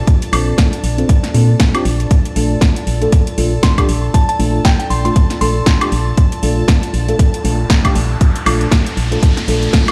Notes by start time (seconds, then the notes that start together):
Already playing: D4 F4 A4 D5 A5 A6
0.07 kick, closed hi-hat
0.22 closed hi-hat
0.32 A#1 C4 D4 F4 A4, open hi-hat, high woodblock
0.58 kick, snare, closed hi-hat
0.73 closed hi-hat
0.84 A#1, open hi-hat
0.98 C4 D4 F4 A4, closed hi-hat
1.09 kick, closed hi-hat
1.23 snare, closed hi-hat
1.34 A#2 C4 D4 F4 A4, open hi-hat
1.60 kick, snare, closed hi-hat
1.74 C4 D4 F4 G4, closed hi-hat, high woodblock
1.85 A#1, open hi-hat
2.00 closed hi-hat
2.11 F4 A4 A5 A6, kick, closed hi-hat
2.25 closed hi-hat
2.36 A#1 A3 D4 F4 A4, open hi-hat
2.61 kick, snare, closed hi-hat
2.76 closed hi-hat
2.87 A#1, open hi-hat
3.01 A3 D4 F4 A4, closed hi-hat
3.12 kick, closed hi-hat
3.27 closed hi-hat
3.37 A#1 A3 D4 F4 A4, open hi-hat
3.63 C6, kick, snare, closed hi-hat
3.77 A3 D4 F4 G4, kick, closed hi-hat, high woodblock
3.89 A#1, open hi-hat
4.14 A5, kick, closed hi-hat
4.29 A5, closed hi-hat
4.39 A#1 A3 D4 F4 A4, open hi-hat
4.65 G5, kick, snare, closed hi-hat
4.79 G5, closed hi-hat
4.90 A#1 C6, open hi-hat
5.04 A3 D4 F4 A4 C6, closed hi-hat
5.16 kick, closed hi-hat
5.30 snare, closed hi-hat
5.41 A#1 A3 D4 F4 A4 C6, open hi-hat
5.66 kick, snare, closed hi-hat
5.81 A3 D4 F4 G4, closed hi-hat, high woodblock
5.92 A#1, open hi-hat
6.17 kick, closed hi-hat, riser
6.32 closed hi-hat
6.42 A#1 A3 D4 F4 A4, open hi-hat
6.68 kick, snare, closed hi-hat
6.83 closed hi-hat
6.94 A#1, open hi-hat
7.08 A3 D4 F4 A4, closed hi-hat
7.19 kick, closed hi-hat
7.34 closed hi-hat
7.44 A#1 A3 D4 F4 A4, open hi-hat
7.70 kick, snare, closed hi-hat
7.84 A3 D4 F4 G4, kick, closed hi-hat, high woodblock
7.95 A#1, open hi-hat
8.21 kick, closed hi-hat
8.36 closed hi-hat
8.46 A#1 A3 D4 F4 A4, open hi-hat, high woodblock
8.61 closed hi-hat
8.71 kick, snare, closed hi-hat
8.87 closed hi-hat
8.97 A#1, open hi-hat
9.11 A3 D4 F4 A4, closed hi-hat
9.23 kick, closed hi-hat
9.37 snare, closed hi-hat
9.47 A#1 A3 D4 F4 A4, open hi-hat
9.63 closed hi-hat
9.73 kick, snare, closed hi-hat
9.88 A3 D4 F4 A4, closed hi-hat, high woodblock